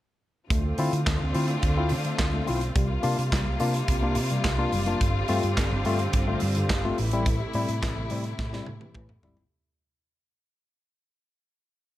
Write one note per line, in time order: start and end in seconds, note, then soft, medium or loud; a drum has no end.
0.50 0.71 D2 medium
0.50 2.74 D3 medium
0.50 0.63 D3 medium
0.50 0.63 A3 medium
0.50 2.74 A3 medium
0.50 2.74 C4 medium
0.50 2.74 F4 medium
0.50 kick loud
0.50 closed hi-hat medium
0.78 0.89 D3 loud
0.78 0.91 C4 medium
0.78 0.92 E4 medium
0.78 0.92 F4 medium
0.78 open hi-hat medium
0.93 1.03 D3 medium
0.93 0.99 E4 soft
0.93 0.99 F4 soft
0.93 closed hi-hat soft
1.06 1.17 D2 loud
1.06 1.19 D3 medium
1.06 1.19 A3 soft
1.06 kick loud
1.06 snare loud
1.06 clap loud
1.06 closed hi-hat medium
1.21 1.31 D2 loud
1.34 1.56 D3 medium
1.34 1.48 C4 medium
1.34 1.48 E4 medium
1.34 1.47 F4 medium
1.34 open hi-hat medium
1.48 1.54 E4 soft
1.48 1.54 F4 soft
1.48 closed hi-hat soft
1.63 1.93 D2 loud
1.63 kick loud
1.63 closed hi-hat medium
1.77 1.90 C4 medium
1.77 1.90 E4 medium
1.77 1.90 F4 medium
1.89 2.12 D3 loud
1.89 open hi-hat medium
2.05 2.18 D3 medium
2.05 2.18 A3 medium
2.05 closed hi-hat soft
2.19 2.40 D2 medium
2.19 2.25 E4 soft
2.19 2.25 F4 soft
2.19 kick loud
2.19 snare loud
2.19 clap medium
2.19 closed hi-hat medium
2.34 2.47 D3 medium
2.34 2.47 A3 medium
2.47 2.69 B1 medium
2.47 2.60 C4 medium
2.47 2.61 E4 medium
2.47 2.61 F4 medium
2.47 open hi-hat medium
2.61 closed hi-hat soft
2.75 2.97 C2 medium
2.75 4.98 C3 medium
2.75 2.88 C3 medium
2.75 9.47 G3 medium
2.75 2.89 G3 medium
2.75 4.99 A#3 medium
2.75 6.94 F4 medium
2.75 kick loud
2.75 closed hi-hat medium
3.03 3.14 C3 loud
3.03 3.16 A#3 medium
3.03 3.16 D4 medium
3.03 3.17 F4 medium
3.03 open hi-hat medium
3.17 3.29 C3 medium
3.17 3.23 D4 soft
3.17 3.23 F4 soft
3.17 closed hi-hat soft
3.32 3.43 C2 loud
3.32 3.45 C3 medium
3.32 3.45 G3 medium
3.32 kick loud
3.32 snare loud
3.32 clap loud
3.32 closed hi-hat medium
3.46 3.57 C2 medium
3.60 3.81 C3 medium
3.60 3.73 A#3 medium
3.60 3.73 D4 medium
3.60 3.73 F4 medium
3.60 open hi-hat medium
3.74 3.80 D4 soft
3.74 3.80 F4 soft
3.74 closed hi-hat soft
3.88 4.17 C2 medium
3.88 kick loud
3.88 closed hi-hat medium
4.02 4.15 A#3 medium
4.02 4.15 D4 medium
4.02 4.16 F4 medium
4.15 4.37 C3 loud
4.15 open hi-hat medium
4.30 4.44 C3 medium
4.30 4.44 G3 medium
4.30 closed hi-hat soft
4.44 4.65 C2 medium
4.44 kick loud
4.44 snare loud
4.44 clap medium
4.44 closed hi-hat medium
4.58 4.71 A#3 medium
4.58 4.72 D4 medium
4.58 4.72 F4 medium
4.72 4.93 F#1 medium
4.72 4.86 C3 medium
4.72 4.86 G3 medium
4.72 open hi-hat medium
4.86 5.00 A#3 medium
4.86 5.00 D4 medium
4.86 5.00 F4 medium
4.86 closed hi-hat soft
5.01 5.22 G1 loud
5.01 5.14 G2 medium
5.01 6.96 D3 medium
5.01 5.14 D3 medium
5.01 6.96 C4 medium
5.01 kick loud
5.01 closed hi-hat medium
5.28 5.40 G2 medium
5.28 5.42 A3 medium
5.28 5.42 C4 medium
5.28 5.42 F4 loud
5.28 open hi-hat medium
5.43 5.54 G2 medium
5.43 5.49 C4 soft
5.43 5.49 F4 soft
5.43 closed hi-hat soft
5.57 5.68 G1 loud
5.57 5.71 G2 soft
5.57 5.71 D3 medium
5.57 kick loud
5.57 snare loud
5.57 clap loud
5.57 closed hi-hat medium
5.72 5.82 G1 loud
5.85 6.06 G2 medium
5.85 5.98 A3 medium
5.85 5.99 C4 medium
5.85 5.98 F4 medium
5.85 open hi-hat medium
5.99 6.05 C4 soft
5.99 6.05 F4 medium
5.99 closed hi-hat soft
6.13 6.34 G1 medium
6.13 kick loud
6.13 closed hi-hat medium
6.27 6.40 A3 medium
6.27 6.41 C4 medium
6.27 6.41 F4 medium
6.40 6.63 G2 loud
6.40 open hi-hat medium
6.55 6.69 G2 medium
6.55 6.69 D3 medium
6.55 closed hi-hat soft
6.69 6.90 G1 medium
6.69 kick loud
6.69 snare loud
6.69 clap medium
6.69 closed hi-hat medium
6.85 6.97 A3 medium
6.85 6.97 C4 medium
6.85 6.97 F4 medium
6.98 7.40 A1 medium
6.98 7.12 A2 medium
6.98 9.49 C3 medium
6.98 7.12 E3 medium
6.98 9.49 A3 medium
6.98 9.49 E4 medium
6.98 open hi-hat medium
7.11 7.25 G3 medium
7.11 7.26 C4 medium
7.11 7.26 E4 medium
7.11 closed hi-hat soft
7.26 7.40 A2 medium
7.26 7.40 E3 medium
7.26 kick loud
7.26 closed hi-hat medium
7.53 7.65 A2 medium
7.53 7.68 G3 medium
7.53 7.68 C4 medium
7.53 7.68 E4 medium
7.53 open hi-hat medium
7.68 7.79 A2 loud
7.68 7.75 C4 soft
7.68 7.75 E4 soft
7.68 closed hi-hat soft
7.83 7.93 A1 loud
7.83 7.96 A2 medium
7.83 7.96 E3 medium
7.83 kick loud
7.83 snare loud
7.83 clap loud
7.83 closed hi-hat medium
7.98 8.08 A1 medium
8.10 8.32 A2 medium
8.10 8.24 G3 medium
8.10 8.24 C4 medium
8.10 8.24 E4 medium
8.10 open hi-hat medium
8.24 8.31 E4 soft
8.24 closed hi-hat soft
8.39 8.60 A2 loud
8.39 kick loud
8.39 snare medium
8.53 8.66 G3 medium
8.53 8.66 C4 medium
8.53 8.67 E4 medium
8.53 snare medium
8.66 8.89 A2 medium
8.66 high tom medium
8.81 8.94 A2 medium
8.81 8.94 E3 medium
8.81 high tom medium
8.95 9.16 A2 loud
8.95 9.09 A2 medium
8.95 9.09 E3 medium
8.95 kick loud
8.95 mid tom medium
9.09 mid tom medium
9.23 9.45 G#1 medium
9.23 9.37 G3 medium
9.23 9.36 C4 medium
9.23 9.36 E4 medium
9.23 floor tom loud
9.37 9.43 C4 soft
9.37 9.43 E4 soft
9.37 floor tom medium